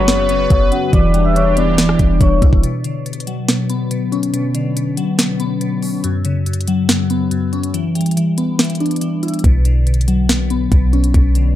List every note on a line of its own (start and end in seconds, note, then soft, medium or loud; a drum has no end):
0.00 0.47 F#1 loud
0.00 0.17 C#2 medium
0.00 0.08 F#2 loud
0.00 0.17 B2 medium
0.00 0.51 C#3 medium
0.00 0.91 C#3 medium
0.00 0.17 F#3 loud
0.00 0.93 F#3 medium
0.00 0.91 B3 medium
0.00 0.89 F#4 medium
0.00 2.60 B4 medium
0.00 0.47 C#5 medium
0.00 0.47 C#6 medium
0.08 0.49 F#2 medium
0.08 snare loud
0.08 closed hi-hat medium
0.29 0.93 B3 medium
0.29 closed hi-hat medium
0.50 0.71 F#1 loud
0.50 0.93 F#2 medium
0.50 0.67 C#5 medium
0.50 0.68 C#6 medium
0.50 kick loud
0.50 closed hi-hat medium
0.72 0.93 C#4 medium
0.72 0.89 F#4 medium
0.72 0.89 F#5 medium
0.72 closed hi-hat medium
0.93 1.96 E1 loud
0.93 1.35 E3 medium
0.93 2.62 E3 medium
0.93 2.62 D4 medium
0.93 2.62 G4 medium
0.93 1.23 D5 medium
0.93 1.23 D6 medium
0.93 kick loud
0.93 closed hi-hat medium
1.14 2.21 G3 medium
1.14 closed hi-hat medium
1.25 1.33 E5 medium
1.25 1.34 E6 medium
1.35 1.77 E3 medium
1.35 1.52 C#5 medium
1.35 1.53 C#6 medium
1.35 closed hi-hat medium
1.57 2.63 B3 medium
1.57 closed hi-hat medium
1.78 2.19 E3 medium
1.78 snare loud
1.78 closed hi-hat medium
1.89 cross-stick loud
1.99 2.20 E1 loud
1.99 2.63 D4 medium
1.99 kick loud
1.99 closed hi-hat medium
2.21 2.41 E1 loud
2.21 2.63 E3 medium
2.21 2.37 C#5 medium
2.21 2.38 C#6 medium
2.21 kick medium
2.21 closed hi-hat medium
2.42 2.52 B1 loud
2.42 2.63 E4 medium
2.42 kick medium
2.42 closed hi-hat medium
2.53 2.63 E1 loud
2.53 kick loud
2.63 3.05 B2 medium
2.63 closed hi-hat medium
2.84 3.91 D3 medium
2.84 closed hi-hat medium
3.06 3.47 B2 medium
3.06 closed hi-hat medium
3.13 closed hi-hat medium
3.20 closed hi-hat medium
3.27 4.33 F#3 medium
3.27 closed hi-hat medium
3.48 3.90 B2 medium
3.48 snare loud
3.48 closed hi-hat medium
3.70 4.76 B3 medium
3.70 closed hi-hat medium
3.91 4.32 B2 medium
3.91 closed hi-hat medium
4.12 5.19 C#4 medium
4.12 closed hi-hat soft
4.23 closed hi-hat medium
4.33 4.75 B2 medium
4.33 closed hi-hat medium
4.55 5.61 D3 medium
4.55 closed hi-hat medium
4.76 5.17 B2 medium
4.76 closed hi-hat medium
4.97 6.04 F#3 medium
4.97 closed hi-hat medium
5.18 5.60 B2 medium
5.18 snare loud
5.18 closed hi-hat medium
5.40 6.04 B3 medium
5.40 closed hi-hat medium
5.61 6.04 B2 medium
5.61 closed hi-hat medium
5.83 6.04 C#4 medium
5.83 open hi-hat medium
6.04 6.45 F#2 loud
6.04 closed hi-hat medium
6.25 7.31 C#3 medium
6.25 closed hi-hat medium
6.46 6.88 F#2 medium
6.46 closed hi-hat medium
6.53 closed hi-hat medium
6.61 closed hi-hat medium
6.68 7.74 F#3 medium
6.68 closed hi-hat medium
6.89 7.30 F#2 medium
6.89 snare loud
6.89 closed hi-hat medium
7.10 7.74 B3 medium
7.10 closed hi-hat medium
7.31 7.74 F#2 medium
7.31 closed hi-hat medium
7.53 7.74 C#4 medium
7.53 closed hi-hat soft
7.63 closed hi-hat medium
7.74 8.15 E3 medium
7.74 closed hi-hat medium
7.95 9.02 G3 medium
7.95 closed hi-hat medium
8.01 closed hi-hat medium
8.06 closed hi-hat medium
8.11 closed hi-hat medium
8.17 8.58 E3 medium
8.17 closed hi-hat medium
8.38 9.44 B3 medium
8.38 closed hi-hat medium
8.59 9.00 E3 medium
8.59 snare loud
8.59 closed hi-hat medium
8.64 closed hi-hat medium
8.70 closed hi-hat medium
8.75 closed hi-hat medium
8.80 9.44 D4 medium
8.80 closed hi-hat soft
8.86 closed hi-hat soft
8.91 closed hi-hat medium
8.96 closed hi-hat medium
9.01 9.44 E3 medium
9.01 closed hi-hat medium
9.23 9.44 E4 medium
9.23 closed hi-hat medium
9.28 closed hi-hat medium
9.34 closed hi-hat medium
9.39 closed hi-hat medium
9.44 10.68 B1 loud
9.44 9.85 B2 medium
9.44 kick loud
9.44 closed hi-hat medium
9.65 10.72 D3 medium
9.65 closed hi-hat medium
9.87 10.28 B2 medium
9.87 closed hi-hat medium
9.94 closed hi-hat medium
10.01 closed hi-hat medium
10.08 11.14 F#3 medium
10.08 closed hi-hat medium
10.29 10.71 B2 medium
10.29 snare loud
10.29 closed hi-hat medium
10.50 11.55 B3 medium
10.50 closed hi-hat medium
10.72 11.13 B1 loud
10.72 11.13 B2 medium
10.72 kick medium
10.72 closed hi-hat medium
10.93 11.55 C#4 medium
10.93 closed hi-hat soft
11.04 closed hi-hat medium
11.14 11.55 B1 loud
11.14 11.55 B2 medium
11.14 kick loud
11.14 closed hi-hat medium
11.35 11.55 D3 medium
11.35 closed hi-hat medium